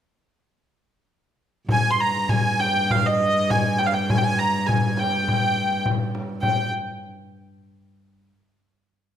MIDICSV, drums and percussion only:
0, 0, Header, 1, 2, 480
1, 0, Start_track
1, 0, Tempo, 604230
1, 1344, Time_signature, 2, 2, 24, 8
1, 2780, Tempo, 591133
1, 4220, Tempo, 573066
1, 5660, Tempo, 556586
1, 7535, End_track
2, 0, Start_track
2, 0, Title_t, "Frame drum"
2, 1339, Note_on_c, 9, 64, 81
2, 1419, Note_off_c, 9, 64, 0
2, 1584, Note_on_c, 9, 64, 24
2, 1664, Note_off_c, 9, 64, 0
2, 1819, Note_on_c, 9, 64, 82
2, 1898, Note_off_c, 9, 64, 0
2, 2065, Note_on_c, 9, 64, 65
2, 2145, Note_off_c, 9, 64, 0
2, 2307, Note_on_c, 9, 64, 75
2, 2387, Note_off_c, 9, 64, 0
2, 2554, Note_on_c, 9, 64, 23
2, 2634, Note_off_c, 9, 64, 0
2, 2784, Note_on_c, 9, 64, 74
2, 2865, Note_off_c, 9, 64, 0
2, 3026, Note_on_c, 9, 64, 69
2, 3107, Note_off_c, 9, 64, 0
2, 3266, Note_on_c, 9, 64, 83
2, 3347, Note_off_c, 9, 64, 0
2, 3504, Note_on_c, 9, 64, 23
2, 3586, Note_off_c, 9, 64, 0
2, 3744, Note_on_c, 9, 64, 83
2, 3825, Note_off_c, 9, 64, 0
2, 3976, Note_on_c, 9, 64, 63
2, 4057, Note_off_c, 9, 64, 0
2, 4228, Note_on_c, 9, 64, 63
2, 4312, Note_off_c, 9, 64, 0
2, 4708, Note_on_c, 9, 64, 68
2, 4792, Note_off_c, 9, 64, 0
2, 4953, Note_on_c, 9, 64, 59
2, 5037, Note_off_c, 9, 64, 0
2, 5188, Note_on_c, 9, 64, 78
2, 5271, Note_off_c, 9, 64, 0
2, 7535, End_track
0, 0, End_of_file